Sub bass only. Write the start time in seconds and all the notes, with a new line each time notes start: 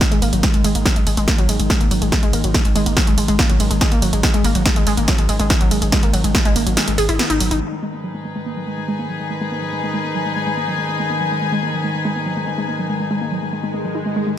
0.12 G#1
0.22 G#1
0.33 G#1
0.54 G#1
0.64 G#1
0.75 G#1
0.96 G#1
1.07 G#1
1.17 G#1
1.38 G#1
1.49 G#1
1.60 G#1
1.81 G#1
1.91 G#1
2.02 G#1
2.23 G#1
2.33 G#1
2.44 G#1
2.65 G#1
2.76 G#1
2.86 G#1
3.08 G#1
3.18 G#1
3.29 G#1
3.50 G#1
3.60 G#1
3.71 G#1
3.92 G#1
4.02 G#1
4.13 G#1
4.34 G#1
4.44 G#1
4.55 G#1
4.76 G#1
4.87 G#1
4.97 G#1
5.19 G#1
5.29 G#1
5.40 G#1
5.61 G#1
5.71 G#1
5.82 G#1
6.03 G#1
6.14 G#1
6.24 G#1
6.46 G#1
6.56 G#1
6.67 G#1
6.88 G#1
6.98 G#1
7.09 G#1
7.30 G#1
7.40 G#1
7.51 G#1